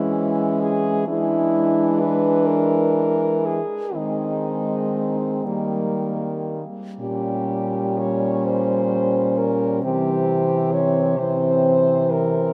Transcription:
0, 0, Header, 1, 5, 480
1, 0, Start_track
1, 0, Tempo, 906344
1, 574, Time_signature, 6, 3, 24, 8
1, 1056, Tempo, 958466
1, 1536, Tempo, 1011804
1, 3456, Tempo, 980392
1, 3936, Tempo, 921659
1, 6306, End_track
2, 0, Start_track
2, 0, Title_t, "French horn"
2, 0, Program_c, 0, 60
2, 0, Note_on_c, 0, 64, 62
2, 323, Note_off_c, 0, 64, 0
2, 327, Note_on_c, 0, 68, 69
2, 566, Note_off_c, 0, 68, 0
2, 571, Note_on_c, 0, 64, 74
2, 1059, Note_on_c, 0, 71, 68
2, 1067, Note_off_c, 0, 64, 0
2, 1289, Note_on_c, 0, 70, 69
2, 1296, Note_off_c, 0, 71, 0
2, 1775, Note_on_c, 0, 68, 56
2, 1782, Note_off_c, 0, 70, 0
2, 2014, Note_on_c, 0, 63, 54
2, 2021, Note_off_c, 0, 68, 0
2, 2726, Note_off_c, 0, 63, 0
2, 3460, Note_on_c, 0, 67, 53
2, 3940, Note_on_c, 0, 73, 53
2, 3948, Note_off_c, 0, 67, 0
2, 4181, Note_on_c, 0, 72, 58
2, 4189, Note_off_c, 0, 73, 0
2, 4667, Note_on_c, 0, 70, 58
2, 4675, Note_off_c, 0, 72, 0
2, 4895, Note_off_c, 0, 70, 0
2, 4898, Note_on_c, 0, 67, 57
2, 5364, Note_on_c, 0, 73, 64
2, 5372, Note_off_c, 0, 67, 0
2, 5606, Note_on_c, 0, 72, 62
2, 5614, Note_off_c, 0, 73, 0
2, 6088, Note_on_c, 0, 70, 72
2, 6096, Note_off_c, 0, 72, 0
2, 6306, Note_off_c, 0, 70, 0
2, 6306, End_track
3, 0, Start_track
3, 0, Title_t, "French horn"
3, 0, Program_c, 1, 60
3, 0, Note_on_c, 1, 61, 50
3, 565, Note_off_c, 1, 61, 0
3, 568, Note_on_c, 1, 62, 54
3, 1846, Note_off_c, 1, 62, 0
3, 2002, Note_on_c, 1, 60, 42
3, 2719, Note_on_c, 1, 58, 37
3, 2727, Note_off_c, 1, 60, 0
3, 3294, Note_off_c, 1, 58, 0
3, 3458, Note_on_c, 1, 61, 42
3, 4904, Note_on_c, 1, 60, 44
3, 4912, Note_off_c, 1, 61, 0
3, 5602, Note_off_c, 1, 60, 0
3, 5605, Note_on_c, 1, 60, 51
3, 6306, Note_off_c, 1, 60, 0
3, 6306, End_track
4, 0, Start_track
4, 0, Title_t, "French horn"
4, 0, Program_c, 2, 60
4, 0, Note_on_c, 2, 56, 47
4, 557, Note_off_c, 2, 56, 0
4, 574, Note_on_c, 2, 56, 52
4, 1848, Note_off_c, 2, 56, 0
4, 2013, Note_on_c, 2, 56, 41
4, 2725, Note_on_c, 2, 55, 36
4, 2732, Note_off_c, 2, 56, 0
4, 3297, Note_off_c, 2, 55, 0
4, 3461, Note_on_c, 2, 55, 42
4, 4881, Note_off_c, 2, 55, 0
4, 4904, Note_on_c, 2, 52, 44
4, 5591, Note_off_c, 2, 52, 0
4, 5601, Note_on_c, 2, 52, 47
4, 6306, Note_off_c, 2, 52, 0
4, 6306, End_track
5, 0, Start_track
5, 0, Title_t, "French horn"
5, 0, Program_c, 3, 60
5, 0, Note_on_c, 3, 52, 47
5, 569, Note_off_c, 3, 52, 0
5, 572, Note_on_c, 3, 52, 57
5, 1848, Note_off_c, 3, 52, 0
5, 2006, Note_on_c, 3, 51, 41
5, 2703, Note_off_c, 3, 51, 0
5, 2720, Note_on_c, 3, 51, 35
5, 3283, Note_off_c, 3, 51, 0
5, 3456, Note_on_c, 3, 46, 41
5, 4896, Note_on_c, 3, 48, 47
5, 4904, Note_off_c, 3, 46, 0
5, 6306, Note_off_c, 3, 48, 0
5, 6306, End_track
0, 0, End_of_file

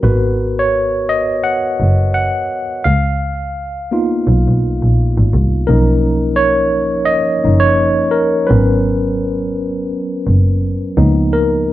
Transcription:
0, 0, Header, 1, 3, 480
1, 0, Start_track
1, 0, Tempo, 705882
1, 12, Time_signature, 4, 2, 24, 8
1, 7976, End_track
2, 0, Start_track
2, 0, Title_t, "Tine electric piano"
2, 0, Program_c, 0, 4
2, 0, Control_c, 0, 64, 127
2, 19, Note_on_c, 0, 70, 56
2, 22, Control_c, 0, 64, 0
2, 26, Note_on_c, 0, 71, 84
2, 27, Note_on_c, 0, 59, 48
2, 27, Note_on_c, 0, 66, 59
2, 124, Control_c, 0, 64, 127
2, 402, Note_on_c, 0, 73, 82
2, 405, Note_off_c, 0, 71, 0
2, 742, Note_on_c, 0, 75, 97
2, 750, Note_off_c, 0, 73, 0
2, 976, Note_on_c, 0, 78, 98
2, 984, Note_off_c, 0, 75, 0
2, 1427, Note_off_c, 0, 78, 0
2, 1457, Note_on_c, 0, 78, 96
2, 1909, Note_off_c, 0, 70, 0
2, 1912, Note_off_c, 0, 59, 0
2, 1913, Note_off_c, 0, 66, 0
2, 1934, Note_on_c, 0, 77, 94
2, 1942, Control_c, 0, 64, 0
2, 1949, Note_off_c, 0, 78, 0
2, 2044, Control_c, 0, 64, 127
2, 2661, Note_on_c, 0, 58, 58
2, 2664, Note_on_c, 0, 59, 52
2, 2668, Note_on_c, 0, 63, 53
2, 2671, Note_on_c, 0, 65, 63
2, 3346, Note_off_c, 0, 77, 0
2, 3830, Note_off_c, 0, 58, 0
2, 3831, Note_off_c, 0, 59, 0
2, 3833, Note_off_c, 0, 63, 0
2, 3835, Note_off_c, 0, 65, 0
2, 3856, Note_on_c, 0, 70, 89
2, 3861, Note_on_c, 0, 53, 60
2, 3862, Control_c, 0, 64, 0
2, 3865, Note_on_c, 0, 58, 50
2, 3866, Note_on_c, 0, 61, 55
2, 3873, Note_on_c, 0, 63, 64
2, 3988, Control_c, 0, 64, 127
2, 4325, Note_on_c, 0, 73, 101
2, 4348, Note_off_c, 0, 70, 0
2, 4550, Note_off_c, 0, 53, 0
2, 4551, Note_off_c, 0, 58, 0
2, 4552, Note_off_c, 0, 61, 0
2, 4556, Note_off_c, 0, 63, 0
2, 4782, Note_off_c, 0, 73, 0
2, 4797, Note_on_c, 0, 75, 101
2, 5057, Note_on_c, 0, 58, 47
2, 5059, Note_on_c, 0, 61, 48
2, 5061, Note_on_c, 0, 53, 52
2, 5063, Note_on_c, 0, 63, 57
2, 5152, Note_off_c, 0, 75, 0
2, 5166, Note_on_c, 0, 73, 96
2, 5271, Note_off_c, 0, 58, 0
2, 5272, Note_off_c, 0, 61, 0
2, 5273, Note_off_c, 0, 53, 0
2, 5274, Note_off_c, 0, 63, 0
2, 5516, Note_on_c, 0, 70, 88
2, 5533, Note_off_c, 0, 73, 0
2, 5758, Note_on_c, 0, 71, 85
2, 5766, Note_off_c, 0, 70, 0
2, 5772, Note_on_c, 0, 54, 55
2, 5774, Note_on_c, 0, 70, 54
2, 5776, Note_on_c, 0, 59, 54
2, 5780, Note_on_c, 0, 61, 69
2, 5782, Control_c, 0, 64, 0
2, 5913, Control_c, 0, 64, 127
2, 6102, Note_off_c, 0, 54, 0
2, 6103, Note_off_c, 0, 70, 0
2, 6104, Note_off_c, 0, 59, 0
2, 6106, Note_off_c, 0, 61, 0
2, 6218, Note_off_c, 0, 71, 0
2, 7458, Note_on_c, 0, 53, 56
2, 7461, Control_c, 0, 64, 0
2, 7463, Note_on_c, 0, 58, 53
2, 7463, Note_on_c, 0, 59, 53
2, 7465, Note_on_c, 0, 63, 65
2, 7599, Control_c, 0, 64, 127
2, 7704, Note_on_c, 0, 70, 92
2, 7976, Note_off_c, 0, 53, 0
2, 7976, Note_off_c, 0, 58, 0
2, 7976, Note_off_c, 0, 59, 0
2, 7976, Note_off_c, 0, 63, 0
2, 7976, Note_off_c, 0, 70, 0
2, 7976, End_track
3, 0, Start_track
3, 0, Title_t, "Double bass"
3, 0, Program_c, 1, 43
3, 23, Note_on_c, 1, 32, 106
3, 950, Note_off_c, 1, 32, 0
3, 1223, Note_on_c, 1, 30, 86
3, 1520, Note_off_c, 1, 30, 0
3, 1944, Note_on_c, 1, 37, 95
3, 2871, Note_off_c, 1, 37, 0
3, 2906, Note_on_c, 1, 35, 104
3, 3009, Note_off_c, 1, 35, 0
3, 3043, Note_on_c, 1, 35, 83
3, 3122, Note_off_c, 1, 35, 0
3, 3280, Note_on_c, 1, 34, 93
3, 3468, Note_off_c, 1, 34, 0
3, 3521, Note_on_c, 1, 32, 84
3, 3600, Note_off_c, 1, 32, 0
3, 3628, Note_on_c, 1, 36, 96
3, 3815, Note_off_c, 1, 36, 0
3, 3868, Note_on_c, 1, 35, 112
3, 4793, Note_off_c, 1, 35, 0
3, 5067, Note_on_c, 1, 30, 84
3, 5362, Note_off_c, 1, 30, 0
3, 5787, Note_on_c, 1, 32, 111
3, 6713, Note_off_c, 1, 32, 0
3, 6983, Note_on_c, 1, 30, 88
3, 7280, Note_off_c, 1, 30, 0
3, 7460, Note_on_c, 1, 37, 102
3, 7976, Note_off_c, 1, 37, 0
3, 7976, End_track
0, 0, End_of_file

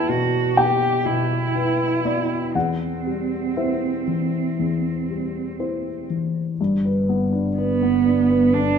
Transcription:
0, 0, Header, 1, 4, 480
1, 0, Start_track
1, 0, Tempo, 967742
1, 767, Tempo, 1008403
1, 1243, Time_signature, 4, 2, 24, 8
1, 3167, Tempo, 970874
1, 4253, End_track
2, 0, Start_track
2, 0, Title_t, "Cello"
2, 0, Program_c, 0, 42
2, 0, Note_on_c, 0, 64, 57
2, 46, Note_on_c, 0, 66, 54
2, 53, Note_off_c, 0, 64, 0
2, 280, Note_on_c, 0, 67, 58
2, 288, Note_off_c, 0, 66, 0
2, 522, Note_on_c, 0, 64, 61
2, 529, Note_off_c, 0, 67, 0
2, 1242, Note_on_c, 0, 60, 45
2, 1249, Note_off_c, 0, 64, 0
2, 2928, Note_off_c, 0, 60, 0
2, 3652, Note_on_c, 0, 59, 60
2, 4129, Note_on_c, 0, 62, 78
2, 4137, Note_off_c, 0, 59, 0
2, 4253, Note_off_c, 0, 62, 0
2, 4253, End_track
3, 0, Start_track
3, 0, Title_t, "Upright piano"
3, 0, Program_c, 1, 0
3, 0, Control_c, 1, 64, 127
3, 0, Note_on_c, 1, 40, 45
3, 0, Note_on_c, 1, 59, 42
3, 0, Note_on_c, 1, 64, 38
3, 0, Note_on_c, 1, 71, 46
3, 0, Note_on_c, 1, 79, 80
3, 0, Note_on_c, 1, 81, 69
3, 46, Note_on_c, 1, 47, 44
3, 264, Note_off_c, 1, 40, 0
3, 264, Note_off_c, 1, 81, 0
3, 285, Note_off_c, 1, 79, 0
3, 285, Note_on_c, 1, 79, 70
3, 288, Note_off_c, 1, 59, 0
3, 288, Note_on_c, 1, 59, 40
3, 429, Note_off_c, 1, 47, 0
3, 525, Note_on_c, 1, 47, 42
3, 672, Note_off_c, 1, 59, 0
3, 770, Note_off_c, 1, 64, 0
3, 770, Note_off_c, 1, 71, 0
3, 770, Note_on_c, 1, 64, 36
3, 770, Note_on_c, 1, 71, 40
3, 908, Note_off_c, 1, 47, 0
3, 984, Note_off_c, 1, 79, 0
3, 985, Note_off_c, 1, 64, 0
3, 986, Note_off_c, 1, 71, 0
3, 1006, Note_on_c, 1, 59, 34
3, 1007, Note_on_c, 1, 74, 49
3, 1229, Note_off_c, 1, 74, 0
3, 1245, Note_off_c, 1, 59, 0
3, 1245, Note_on_c, 1, 40, 38
3, 1247, Note_on_c, 1, 78, 52
3, 1252, Control_c, 1, 64, 0
3, 1320, Control_c, 1, 64, 127
3, 1490, Note_on_c, 1, 55, 31
3, 1707, Note_off_c, 1, 78, 0
3, 1730, Note_on_c, 1, 76, 35
3, 1732, Note_on_c, 1, 64, 26
3, 1732, Note_on_c, 1, 72, 30
3, 1871, Note_off_c, 1, 55, 0
3, 1949, Note_off_c, 1, 64, 0
3, 1949, Note_off_c, 1, 72, 0
3, 1970, Note_on_c, 1, 52, 29
3, 2188, Note_off_c, 1, 40, 0
3, 2217, Note_on_c, 1, 40, 29
3, 2353, Note_off_c, 1, 52, 0
3, 2456, Note_on_c, 1, 55, 27
3, 2671, Note_off_c, 1, 76, 0
3, 2694, Note_on_c, 1, 64, 25
3, 2696, Note_on_c, 1, 72, 27
3, 2836, Note_off_c, 1, 55, 0
3, 2913, Note_off_c, 1, 64, 0
3, 2914, Note_off_c, 1, 72, 0
3, 2935, Note_on_c, 1, 52, 25
3, 3153, Note_off_c, 1, 40, 0
3, 3170, Note_off_c, 1, 52, 0
3, 3176, Control_c, 1, 64, 0
3, 3176, Note_on_c, 1, 43, 44
3, 3243, Control_c, 1, 64, 127
3, 3296, Note_on_c, 1, 71, 34
3, 3415, Note_on_c, 1, 59, 38
3, 3485, Note_off_c, 1, 71, 0
3, 3531, Note_on_c, 1, 62, 38
3, 3605, Note_off_c, 1, 59, 0
3, 3658, Note_on_c, 1, 71, 40
3, 3723, Note_off_c, 1, 62, 0
3, 3777, Note_on_c, 1, 59, 37
3, 3846, Note_off_c, 1, 71, 0
3, 3894, Note_on_c, 1, 62, 43
3, 3964, Note_off_c, 1, 59, 0
3, 4013, Note_on_c, 1, 71, 45
3, 4082, Note_off_c, 1, 62, 0
3, 4113, Note_off_c, 1, 43, 0
3, 4137, Note_on_c, 1, 50, 37
3, 4201, Note_off_c, 1, 71, 0
3, 4253, Note_off_c, 1, 50, 0
3, 4253, End_track
4, 0, Start_track
4, 0, Title_t, "Double bass"
4, 0, Program_c, 2, 43
4, 3168, Note_on_c, 2, 31, 49
4, 4253, Note_off_c, 2, 31, 0
4, 4253, End_track
0, 0, End_of_file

